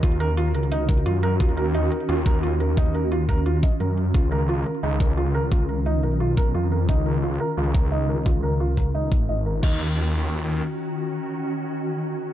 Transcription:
<<
  \new Staff \with { instrumentName = "Felt piano" } { \time 4/4 \key ees \minor \tempo 4 = 175 f'8 bes'8 f'8 bes'8 ees'8 bes'8 f'8 bes'8 | f'8 bes'8 ees'8 bes'8 f'8 bes'8 f'8 bes'8 | ees'8 bes'8 f'8 bes'8 f'8 ees''8 bes'8 r8 | f'8 bes'8 f'8 bes'8 ees'8 bes'8 f'8 bes'8 |
f'8 bes'8 ees'8 bes'8 f'8 bes'8 f'8 bes'8 | ees'8 bes'8 f'8 bes'8 f'8 bes'8 ees'8 bes'8 | f'8 bes'8 f'8 bes'8 ees'8 r8 ees''8 bes'8 | ees'8 r2. r8 |
r1 | }
  \new Staff \with { instrumentName = "Synth drone" } { \time 4/4 \key ees \minor << { ges'1~ | ges'1~ | ges'1 | f'1~ |
f'1~ | f'1~ | f'1 | <ees des' ges'>1~ |
<ees des' ges'>1 | } \\ { <ees des'>1~ | <ees des'>1~ | <ees des'>1~ | <ees des'>1~ |
<ees des'>1~ | <ees des'>1~ | <ees des'>1 | r1 |
r1 | } >> }
  \new Staff \with { instrumentName = "Detuned saw bass" } { \clef bass \time 4/4 \key ees \minor ees,4. des,4. ges,4 | ees,4. r8 ees,8 ees,4. | ees,4. ees,4 r8 ges,4 | des,4. r8 des,8 des,4. |
des,4. ces,4. f,4 | des,4. r8 des,8 des,4. | des,4. des,4. aes,,4 | ees,2. r4 |
r1 | }
  \new DrumStaff \with { instrumentName = "Drums" } \drummode { \time 4/4 <hh bd>16 hh16 hh8 hh8 hh16 hh16 hh8 <hh bd>16 hh16 hh8 hh8 | <hh bd>16 hh16 hh8 hh8 hh16 hh16 hh8 <hh bd>16 hh16 hh8 hh8 | <hh bd>16 hh16 hh8 hh8 <hh bd>16 hh16 hh8 <hh bd>16 hh16 hh8 hh8 | <hh bd>16 hh16 hh8 hh8 hh16 hh16 hh8 <hh bd>8 hh8 hh8 |
<hh bd>16 hh16 hh8 hh8 hh16 hh16 hh8 <hh bd>16 hh16 hh8 hh8 | <hh bd>16 hh16 hh8 hh8 hh16 hh16 hh8 bd8 hh8 hh8 | bd16 hh16 hh16 hh16 hh8 <hh bd>16 hh16 hh8 bd16 hh16 hh8 hh8 | <cymc bd>4 r4 r4 r4 |
r4 r4 r4 r4 | }
>>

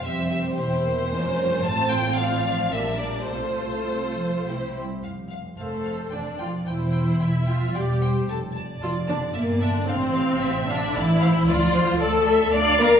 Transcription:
<<
  \new Staff \with { instrumentName = "Violin section" } { \time 3/4 \key c \phrygian \tempo 4 = 112 e''8 e''8 c''2 | \key f \major a''8 g''8 f''4 e''8 d''8 | c''2~ c''8 r8 | f''8 f''8 f''8 f''8 g''8 g''8 |
g''8 g''8 g''8 g''8 g''8 g''8 | a''8 a''8 a''8 a''8 e''8 e''8 | f''8 f''8 f''8 f''8 f''8 f''8 | d''8 d''8 d''8 d''8 d''8 d''8 | }
  \new Staff \with { instrumentName = "Violin section" } { \time 3/4 \key c \phrygian << { c''2 bes'4 | \key f \major c''4 d''4 d''4 | c''2 c''8 r8 | r4 c''4 d''4 |
c''4 e''4 d''8 c''8 | a'8 d''2~ d''8 | c''8 f''8 e''4 d''8 c''8 | d''8 c''8 d''8 e''8 f''4 | } \\ { g'2 f'4 | f'2 bes'4 | a'2 g'8 r8 | r2. |
r2. | r2. | r2. | r2. | } >> }
  \new Staff \with { instrumentName = "Viola section" } { \time 3/4 \key c \phrygian << { c'4 e'4 des'4 | \key f \major c'2 d'4 | f'2 e'8 r8 | r4 a'4 d'8 f'8 |
e'4. f'8 g'4 | r4 f'8 d'8 bes8 d'8 | c'4. d'8 e'4 | f'4 a'4 d''8 bes'8 | } \\ { g4 c'8 bes8 aes8 g8 | a4 a8 f8 g4 | a2 c'8 r8 | r2. |
r2. | r2. | r2. | r2. | } >> }
  \new Staff \with { instrumentName = "Cello section" } { \clef bass \time 3/4 \key c \phrygian f,4 e,4 f,4 | \key f \major a,2 bes,4 | c4 c8 f8 a8 g8 | r4 a4 d8 f8 |
e4. f8 g4 | r4 f8 d8 bes,8 d8 | c4. d8 e4 | f4 a4 d'8 bes8 | }
  \new Staff \with { instrumentName = "Double bass section" } { \clef bass \time 3/4 \key c \phrygian f,,4 e,,4 f,,4 | \key f \major a,,2 bes,,4 | c,2 c,8 r8 | f,,4 f,,4 f,,4 |
e,,4 e,,4 e,,4 | f,,4 f,,4 g,,4 | a,,4 a,,4 a,,4 | d,4 d,4 d,4 | }
>>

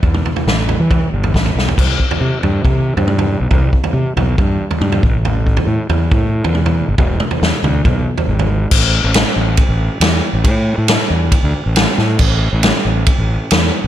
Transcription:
<<
  \new Staff \with { instrumentName = "Fingered electric bass" } { \clef bass \time 4/4 \key c \major \tempo 4 = 138 e,8 r8 a,,8. e8 r16 g,,8 a,,8 b,,8 | c,8 r8 c16 r16 g,8 c8. g,4 b,,16 | c,8 r8 c16 r16 b,,8 g,8 r8 g,8 a,,8~ | a,,4 a,16 r16 e,8 a,8. e,4 g,,16 |
e,,8 r8 e,16 r16 d,8 b,,8 r8 gis,,4 | a,,8. a,,8 r16 a,,8 r16 a,,8 r16 e,8 r16 a,,16 | a,8. a,8 r16 e,8 r16 d,16 r16 a,,8 r16 a,8 | a,,8. a,,8 r16 a,,8 r16 a,,8 r16 e,8 r16 a,,16 | }
  \new DrumStaff \with { instrumentName = "Drums" } \drummode { \time 4/4 <bd tomfh>16 toml16 tomfh16 tomfh16 sn8 tomfh8 <bd tomfh toml>8. tomfh16 <bd sn>16 tomfh16 sn16 tomfh16 | <cymc bd tomfh>8 bd16 tomfh16 r8 tomfh8 <bd tomfh>8. tomfh16 toml16 tomfh8. | <bd tomfh>8 bd16 tomfh16 r8 tomfh8 <bd tomfh>8. tomfh16 toml16 tomfh16 bd8 | tomfh8 bd16 tomfh16 r8 tomfh8 <bd tomfh>8. tomfh16 toml16 tomfh8. |
<bd tomfh>8 toml16 tomfh16 sn8 <tomfh toml>8 <bd tomfh>8. tomfh16 r16 tomfh8. | <cymc bd>4 <rb sn>4 <bd rb>4 <rb sn>4 | <bd rb>4 <rb sn>4 <bd rb>4 <rb sn>8 sn8 | <cymc bd>4 <rb sn>4 <bd rb>4 <rb sn>4 | }
>>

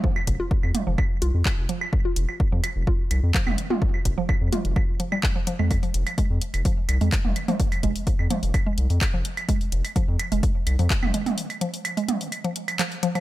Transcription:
<<
  \new Staff \with { instrumentName = "Synth arpeggio sound" } { \clef bass \time 4/4 \key f \minor \tempo 4 = 127 f16 r8 f'16 r8. f16 r8 f'16 r8. f16 r16 | r16 f'16 r8. f16 r8 f'16 r8. f16 r8 f'16 | r8. f16 r8 f'16 r8. f16 g16 r16 f16 f16 aes16 | r16 f16 r8 aes16 r8. f16 r8 aes16 r8. f16 |
r8 aes16 r8. f16 r8 aes16 r8. f16 r8 | aes16 r8. f16 r8 aes16 r8. f16 r8 aes16 r16 | r8 f16 r8 aes16 r8. f16 r8 f16 r16 f16 f16 | }
  \new Staff \with { instrumentName = "Analog synth bass" } { \clef bass \time 4/4 \key f \minor r8 f,,16 r8 f,16 r16 f,,16 r8 c,16 f,16 r16 f,,16 r8 | r8 f,,16 r8 f,16 r16 f,,16 r8 c,16 f,16 r16 f,,16 r8 | r8 f,,16 r8 f,16 r16 f,,16 r4. r16 f,16~ | f,16 r16 f,,16 r8 f,16 r16 f,,16 r8 c,16 f,16 r16 f,,16 r8 |
r8 f,,16 r8 f,16 r16 f,,16 r8 c,16 f,16 r16 f,,16 r8 | r8 f,,16 r8 f,16 r16 f,,16 r8 c,16 f,16 r16 f,,16 r8 | r1 | }
  \new DrumStaff \with { instrumentName = "Drums" } \drummode { \time 4/4 bd16 cl16 <hh bd>8 bd16 cl16 <hh toml>8 <cl bd>8 hh8 <hc cl bd>8 hh16 cl16 | bd8 hh16 cl16 bd8 <cl hh>8 bd8 <cl hh>8 <hc bd>16 <cl toml>16 hh16 toml16 | bd16 cl16 <hh bd>8 <cl bd>8 <hh toml>16 hh16 <cl bd>8 hh16 cl16 <hc bd>8 hh16 cl16 | <cl hh bd>16 hh16 hh16 <cl hh>16 <hh bd>8 hh16 <cl hh>16 <hh bd>8 <cl hh>16 hh16 <hc hh bd>16 toml16 <cl hh>16 <hh toml>16 |
<hh bd>16 <cl hh>16 <hh bd>16 hh16 <hh bd>16 cl16 <hh toml>16 hh16 <cl hh bd>8 hh16 hh16 <hc cl hh bd>8 hh16 <cl hh>16 | <hh bd>16 hh16 hh16 <cl hh>16 <hh bd>8 <cl hh>16 hh16 <hh bd>8 <cl hh>16 hh16 <hc hh bd>16 <cl toml>16 hh16 <hh toml>16 | hh16 <cl hh>16 hh16 hh16 <cl hh>16 hh16 <hh toml>16 hh16 <cl hh>16 hh16 hh16 <cl hh>16 <hc hh>16 hh16 hh16 <cl hh>16 | }
>>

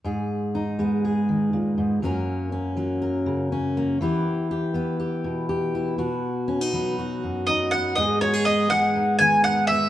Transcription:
<<
  \new Staff \with { instrumentName = "Mandolin" } { \time 4/4 \key gis \minor \tempo 4 = 121 r1 | r1 | r1 | r2. dis''8 fis''8 |
dis''8 cis''8 dis''8 fis''4 gis''8 fis''8 e''8 | }
  \new Staff \with { instrumentName = "Steel-string acoustic guitar" } { \time 4/4 \key gis \minor << { gis'4 dis'8 b8 gis'2 | <fis ais cis' ais'>4 cis'8 ais8 ais'4 cis'8 ais8 | <b e' g'>4 g'8 e'8 g'4 g'8 e'8 | fis'4 cis'16 dis'16 b8 fis'4 dis'8 b8 |
<gis b dis' gis'>8 fis'16 gis'16 b8 gis'8 dis'8 b8 dis'8 b8 | } \\ { gis,4. gis4 dis8 ais,8 gis,8 | fis,4. fis4 cis4. | e4. b4 b,4. | b,4. fis4 fis,4. |
gis,4. gis4 dis4. | } >> }
>>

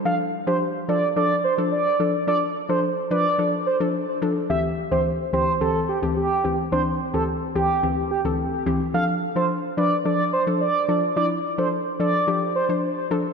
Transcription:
<<
  \new Staff \with { instrumentName = "Analog synth lead" } { \time 4/4 \key d \minor \tempo 4 = 108 f''16 r8 c''16 r8 d''8 d''8 c''16 r16 d''8. r16 | d''16 r8 c''16 r8 d''8. r16 c''16 r4 r16 | e''16 r8 c''16 r8 c''8 a'8 g'16 r16 g'8. r16 | c''16 r8 a'16 r8 g'8. r16 g'16 r4 r16 |
f''16 r8 c''16 r8 d''8 d''8 c''16 r16 d''8. r16 | d''16 r8 c''16 r8 d''8. r16 c''16 r4 r16 | }
  \new Staff \with { instrumentName = "Synth pluck" } { \time 4/4 \key d \minor <f d' a'>16 r8 <f d' g'>16 r8 <f d' a'>16 r16 <f d' a'>16 r8 <f d' a'>16 r8 <f d' a'>16 r16 | <f d' a'>16 r8 <f d' a'>16 r8 <f d' b'>16 r16 <f d' a'>16 r8 <f d' a'>16 r8 <f d' a'>16 r16 | <d, e c' g'>16 r8 <d, e c' g'>16 r8 <d, e c' g'>16 r16 <d, e c' g'>16 r8 <d, e c' g'>16 r8 <d, e c' g'>16 r16 | <d, e c' d'>16 r8 <d, e c' g'>16 r8 <d, e c' g'>16 r16 <d, e c' g'>16 r8 <d, e c' a'>16 r8 <d, e c' g'>16 r16 |
<f d' a'>16 r8 <f d' a'>16 r8 <f d' b'>16 r16 <f d' a'>16 r8 <f d' a'>16 r8 <f d' a'>16 r16 | <f d' e'>16 r8 <f d' a'>16 r8 <f d' a'>16 r16 <f d' g'>16 r8 <f d' c''>16 r8 <f d' a'>16 r16 | }
>>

